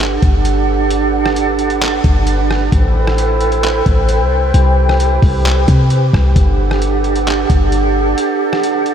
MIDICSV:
0, 0, Header, 1, 4, 480
1, 0, Start_track
1, 0, Key_signature, 1, "major"
1, 0, Tempo, 454545
1, 957, Time_signature, 4, 2, 24, 8
1, 9444, End_track
2, 0, Start_track
2, 0, Title_t, "Flute section"
2, 0, Program_c, 0, 73
2, 0, Note_on_c, 0, 62, 78
2, 0, Note_on_c, 0, 67, 73
2, 0, Note_on_c, 0, 69, 73
2, 0, Note_on_c, 0, 71, 73
2, 0, Note_on_c, 0, 78, 91
2, 2838, Note_off_c, 0, 62, 0
2, 2838, Note_off_c, 0, 67, 0
2, 2838, Note_off_c, 0, 69, 0
2, 2838, Note_off_c, 0, 78, 0
2, 2876, Note_on_c, 0, 72, 76
2, 2876, Note_on_c, 0, 79, 89
2, 2877, Note_on_c, 0, 64, 85
2, 2877, Note_on_c, 0, 69, 75
2, 4777, Note_off_c, 0, 64, 0
2, 4777, Note_off_c, 0, 69, 0
2, 4797, Note_on_c, 0, 64, 79
2, 4797, Note_on_c, 0, 67, 77
2, 6389, Note_off_c, 0, 64, 0
2, 6408, Note_off_c, 0, 72, 0
2, 6458, Note_off_c, 0, 79, 0
2, 6716, Note_on_c, 0, 69, 73
2, 6717, Note_on_c, 0, 62, 81
2, 6717, Note_on_c, 0, 78, 89
2, 9444, Note_off_c, 0, 62, 0
2, 9444, Note_off_c, 0, 67, 0
2, 9444, Note_off_c, 0, 69, 0
2, 9444, Note_off_c, 0, 71, 0
2, 9444, Note_off_c, 0, 78, 0
2, 9444, End_track
3, 0, Start_track
3, 0, Title_t, "808-style bass"
3, 0, Program_c, 1, 38
3, 0, Note_on_c, 1, 31, 114
3, 194, Note_off_c, 1, 31, 0
3, 238, Note_on_c, 1, 31, 105
3, 2115, Note_off_c, 1, 31, 0
3, 2158, Note_on_c, 1, 31, 104
3, 2848, Note_off_c, 1, 31, 0
3, 2876, Note_on_c, 1, 33, 111
3, 4034, Note_off_c, 1, 33, 0
3, 4078, Note_on_c, 1, 33, 110
3, 4436, Note_on_c, 1, 36, 95
3, 4452, Note_off_c, 1, 33, 0
3, 4778, Note_off_c, 1, 36, 0
3, 4796, Note_on_c, 1, 36, 113
3, 5488, Note_off_c, 1, 36, 0
3, 5517, Note_on_c, 1, 36, 106
3, 5977, Note_off_c, 1, 36, 0
3, 5998, Note_on_c, 1, 48, 103
3, 6458, Note_off_c, 1, 48, 0
3, 6478, Note_on_c, 1, 36, 105
3, 6708, Note_off_c, 1, 36, 0
3, 6716, Note_on_c, 1, 31, 113
3, 7874, Note_off_c, 1, 31, 0
3, 7918, Note_on_c, 1, 31, 105
3, 8608, Note_off_c, 1, 31, 0
3, 9444, End_track
4, 0, Start_track
4, 0, Title_t, "Drums"
4, 0, Note_on_c, 9, 42, 72
4, 9, Note_on_c, 9, 39, 123
4, 103, Note_off_c, 9, 42, 0
4, 114, Note_off_c, 9, 39, 0
4, 237, Note_on_c, 9, 42, 71
4, 238, Note_on_c, 9, 36, 97
4, 343, Note_off_c, 9, 42, 0
4, 344, Note_off_c, 9, 36, 0
4, 475, Note_on_c, 9, 42, 74
4, 580, Note_off_c, 9, 42, 0
4, 956, Note_on_c, 9, 42, 93
4, 1062, Note_off_c, 9, 42, 0
4, 1326, Note_on_c, 9, 37, 97
4, 1432, Note_off_c, 9, 37, 0
4, 1439, Note_on_c, 9, 42, 74
4, 1545, Note_off_c, 9, 42, 0
4, 1676, Note_on_c, 9, 42, 59
4, 1782, Note_off_c, 9, 42, 0
4, 1796, Note_on_c, 9, 42, 58
4, 1902, Note_off_c, 9, 42, 0
4, 1916, Note_on_c, 9, 42, 71
4, 1928, Note_on_c, 9, 39, 126
4, 2022, Note_off_c, 9, 42, 0
4, 2034, Note_off_c, 9, 39, 0
4, 2157, Note_on_c, 9, 42, 68
4, 2158, Note_on_c, 9, 36, 101
4, 2262, Note_off_c, 9, 42, 0
4, 2263, Note_off_c, 9, 36, 0
4, 2394, Note_on_c, 9, 42, 75
4, 2500, Note_off_c, 9, 42, 0
4, 2646, Note_on_c, 9, 37, 104
4, 2752, Note_off_c, 9, 37, 0
4, 2876, Note_on_c, 9, 36, 114
4, 2876, Note_on_c, 9, 42, 91
4, 2981, Note_off_c, 9, 36, 0
4, 2982, Note_off_c, 9, 42, 0
4, 3247, Note_on_c, 9, 37, 98
4, 3352, Note_off_c, 9, 37, 0
4, 3359, Note_on_c, 9, 42, 72
4, 3465, Note_off_c, 9, 42, 0
4, 3596, Note_on_c, 9, 42, 58
4, 3702, Note_off_c, 9, 42, 0
4, 3716, Note_on_c, 9, 42, 57
4, 3822, Note_off_c, 9, 42, 0
4, 3837, Note_on_c, 9, 42, 75
4, 3848, Note_on_c, 9, 39, 127
4, 3942, Note_off_c, 9, 42, 0
4, 3954, Note_off_c, 9, 39, 0
4, 4077, Note_on_c, 9, 42, 70
4, 4078, Note_on_c, 9, 36, 99
4, 4183, Note_off_c, 9, 36, 0
4, 4183, Note_off_c, 9, 42, 0
4, 4315, Note_on_c, 9, 42, 73
4, 4420, Note_off_c, 9, 42, 0
4, 4796, Note_on_c, 9, 42, 92
4, 4902, Note_off_c, 9, 42, 0
4, 5167, Note_on_c, 9, 37, 92
4, 5273, Note_off_c, 9, 37, 0
4, 5279, Note_on_c, 9, 42, 73
4, 5385, Note_off_c, 9, 42, 0
4, 5517, Note_on_c, 9, 36, 84
4, 5518, Note_on_c, 9, 46, 50
4, 5623, Note_off_c, 9, 36, 0
4, 5623, Note_off_c, 9, 46, 0
4, 5757, Note_on_c, 9, 42, 76
4, 5768, Note_on_c, 9, 39, 126
4, 5862, Note_off_c, 9, 42, 0
4, 5874, Note_off_c, 9, 39, 0
4, 5997, Note_on_c, 9, 42, 69
4, 5998, Note_on_c, 9, 36, 98
4, 6102, Note_off_c, 9, 42, 0
4, 6103, Note_off_c, 9, 36, 0
4, 6234, Note_on_c, 9, 42, 73
4, 6340, Note_off_c, 9, 42, 0
4, 6478, Note_on_c, 9, 36, 98
4, 6486, Note_on_c, 9, 37, 100
4, 6584, Note_off_c, 9, 36, 0
4, 6592, Note_off_c, 9, 37, 0
4, 6716, Note_on_c, 9, 36, 116
4, 6716, Note_on_c, 9, 42, 88
4, 6821, Note_off_c, 9, 42, 0
4, 6822, Note_off_c, 9, 36, 0
4, 7087, Note_on_c, 9, 37, 94
4, 7192, Note_off_c, 9, 37, 0
4, 7199, Note_on_c, 9, 42, 76
4, 7305, Note_off_c, 9, 42, 0
4, 7437, Note_on_c, 9, 42, 54
4, 7542, Note_off_c, 9, 42, 0
4, 7557, Note_on_c, 9, 42, 61
4, 7662, Note_off_c, 9, 42, 0
4, 7677, Note_on_c, 9, 42, 74
4, 7689, Note_on_c, 9, 39, 124
4, 7783, Note_off_c, 9, 42, 0
4, 7794, Note_off_c, 9, 39, 0
4, 7917, Note_on_c, 9, 42, 70
4, 7918, Note_on_c, 9, 36, 98
4, 8023, Note_off_c, 9, 36, 0
4, 8023, Note_off_c, 9, 42, 0
4, 8155, Note_on_c, 9, 42, 73
4, 8260, Note_off_c, 9, 42, 0
4, 8636, Note_on_c, 9, 42, 87
4, 8741, Note_off_c, 9, 42, 0
4, 9006, Note_on_c, 9, 37, 93
4, 9111, Note_off_c, 9, 37, 0
4, 9119, Note_on_c, 9, 42, 76
4, 9224, Note_off_c, 9, 42, 0
4, 9356, Note_on_c, 9, 42, 56
4, 9444, Note_off_c, 9, 42, 0
4, 9444, End_track
0, 0, End_of_file